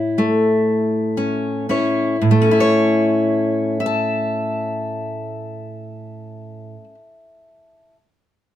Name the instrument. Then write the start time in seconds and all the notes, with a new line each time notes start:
steel-string acoustic guitar
Already playing: A2 E4 C#5
0.18 A3
1.17 C#4
1.69 C#4 E4 C#5
2.21 A2
2.31 A3
2.42 C#4
2.51 E4
2.60 C#5
3.80 E5
3.86 A5